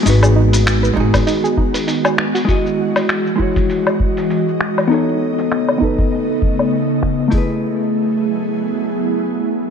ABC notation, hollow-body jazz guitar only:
X:1
M:4/4
L:1/8
Q:"Swing 16ths" 1/4=99
K:F#dor
V:1 name="Hollow-body jazz guitar"
[G,DFB]3 [G,DFG]4- [G,DFG] | [G,EFd]3 [G,EFc]4- [G,EFc] | [B,DAc]3 [B,DAB]4- [B,DAB] | [A,EGB]8 |]